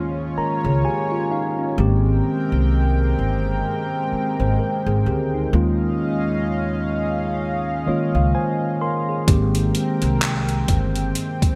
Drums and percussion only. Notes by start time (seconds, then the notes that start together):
9.28 kick, closed hi-hat
9.55 closed hi-hat
9.75 closed hi-hat
10.02 closed hi-hat
10.22 clap, closed hi-hat
10.49 closed hi-hat
10.68 kick, closed hi-hat
10.96 closed hi-hat
11.15 closed hi-hat
11.42 kick, closed hi-hat